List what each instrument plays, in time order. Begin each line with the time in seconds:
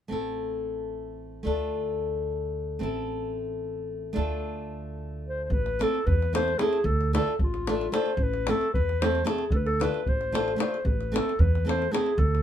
0.08 upright bass A1, nylon-string guitar A3 C4 E4
0.12 nylon-string guitar A4
1.43 upright bass D2, nylon-string guitar A3 D4 F4 A4
2.79 upright bass A1, nylon-string guitar A3 C4 E4
2.83 nylon-string guitar A4
4.13 upright bass D2, nylon-string guitar A3 D4 F4 A4
5.28 clarinet C5
5.44 clarinet C5
5.50 upright bass A1, clarinet B4, davul low
5.66 davul high
5.79 nylon-string guitar A3 C4 E4 A4, clarinet A4, davul high
5.95 davul high
6.06 upright bass E2, clarinet B4, davul low
6.22 davul high
6.33 nylon-string guitar A3 C4 E4 A4, clarinet C5, davul high
6.48 davul high
6.58 nylon-string guitar A3 C4 E4 A4, clarinet G#4, davul high
6.73 davul high
6.84 upright bass D2, clarinet A4, davul low
7.01 davul high
7.13 nylon-string guitar A3 D4 F4 A4, clarinet A4, davul high
7.28 davul high
7.39 upright bass A1, davul low
7.44 clarinet F4
7.54 davul high
7.67 nylon-string guitar A3 D4 F4 A4, davul high
7.81 davul high
7.92 nylon-string guitar A3 D4 F4 A4, clarinet C5, davul high
8.06 davul high
8.17 upright bass A1, davul low
8.23 clarinet B4
8.34 davul high
8.47 nylon-string guitar A3 C4 E4 A4, clarinet A4, davul high
8.61 davul high
8.74 upright bass E2, clarinet B4, davul low
8.89 davul high
9.01 nylon-string guitar A3 C4 E4 A4, clarinet C5, davul high
9.15 davul high
9.25 nylon-string guitar A3 C4 E4 A4, clarinet G#4, davul high
9.38 davul high
9.50 upright bass D2, clarinet A4, davul low
9.56 clarinet B4
9.66 clarinet A4, davul high
9.80 nylon-string guitar A3 D4 F4 A4, clarinet B4, davul high
9.94 davul high
10.06 upright bass A1, clarinet C5, davul low
10.21 davul high
10.32 nylon-string guitar A3 D4 F4 A4, davul high
10.48 davul high
10.56 nylon-string guitar A3 D4 F4 A4, davul high
10.61 clarinet C5
10.74 davul high
10.85 upright bass A1, clarinet B4, davul low
11.01 davul high
11.12 nylon-string guitar A3 C4 E4 A4
11.16 clarinet A4, davul high
11.29 davul high
11.39 upright bass E2, clarinet B4, davul low
11.55 davul high
11.65 nylon-string guitar A3 C4 E4 A4
11.69 clarinet C5, davul high
11.82 davul high
11.91 nylon-string guitar A3 C4 E4 A4, clarinet G#4, davul high
12.06 davul high
12.18 upright bass D2, clarinet A4, davul low
12.35 davul high